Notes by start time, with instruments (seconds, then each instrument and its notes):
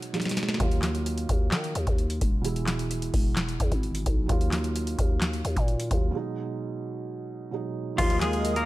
Already playing: felt piano B2 F#3 G#3 D#4
0.02 closed hi-hat
0.13 felt piano B2 F#3 G#3 D#4, snare, closed hi-hat
0.20 snare, closed hi-hat
0.25 snare, closed hi-hat
0.31 snare
0.37 snare, closed hi-hat
0.43 snare
0.49 snare
0.54 felt piano D#3, snare
0.59 808-style bass D#2, felt piano F#3 A#3 F4, kick, closed hi-hat
0.71 closed hi-hat
0.82 snare, clap, closed hi-hat
0.95 closed hi-hat
1.06 closed hi-hat
1.18 closed hi-hat
1.29 808-style bass D#2, kick, closed hi-hat
1.52 808-style bass D#3, snare, clap, closed hi-hat
1.64 closed hi-hat
1.75 808-style bass D#2, closed hi-hat
1.87 808-style bass D#2, kick, closed hi-hat
1.98 closed hi-hat
2.10 closed hi-hat
2.21 808-style bass E1, kick, closed hi-hat
2.42 felt piano B2 E3 G#3, closed hi-hat
2.47 felt piano E4
2.56 closed hi-hat
2.67 snare, clap, closed hi-hat
2.79 closed hi-hat
2.91 closed hi-hat
3.02 closed hi-hat
3.14 808-style bass E1, kick, open hi-hat
3.36 snare, clap, closed hi-hat
3.49 closed hi-hat
3.60 808-style bass E2, kick, closed hi-hat
3.72 808-style bass G#1, kick, closed hi-hat
3.83 closed hi-hat
3.95 closed hi-hat
4.06 808-style bass B1, kick, closed hi-hat
4.26 808-style bass D#2, felt piano D#3 F#3 A#3, kick, closed hi-hat
4.32 felt piano F4
4.41 closed hi-hat
4.52 snare, clap, closed hi-hat
4.64 closed hi-hat
4.76 closed hi-hat
4.87 closed hi-hat
4.99 808-style bass D#2, kick, closed hi-hat
5.21 snare, clap, closed hi-hat
5.33 closed hi-hat
5.45 808-style bass D#2, closed hi-hat
5.56 808-style bass A#2, kick, closed hi-hat
5.68 closed hi-hat
5.80 closed hi-hat
5.90 808-style bass D#2, felt piano D#3 F#3 A#3 F4, kick, closed hi-hat
6.11 felt piano B2 F#3 G#3
6.17 felt piano D#4
7.51 felt piano B2 F#3 G#3 D#4
7.96 808-style bass D#2, felt piano D#3 F#3 A#3, clean electric guitar F3 F4, analog synth pad A#4 D#5 F5 D#6, kick, closed hi-hat, crash
8.01 felt piano F4
8.10 closed hi-hat
8.21 clean electric guitar G#3 G#4, snare, clap, closed hi-hat
8.33 closed hi-hat
8.45 closed hi-hat
8.56 clean electric guitar A#3 A#4, closed hi-hat